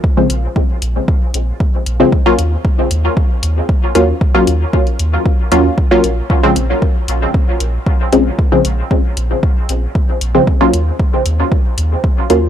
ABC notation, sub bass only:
X:1
M:4/4
L:1/8
Q:1/4=115
K:Bbm
V:1 name="Sub bass" clef=bass
z B,,, z B,,, z B,,, z B,,, | z E,, z E,, z E,, z E,, | z E,, z E,, z E,, z B,,, | z B,,, z B,,, z B,,, z B,,, |
z B,,, z B,,, z B,,, z B,,, | z E,, z E,, z E,, z E,, |]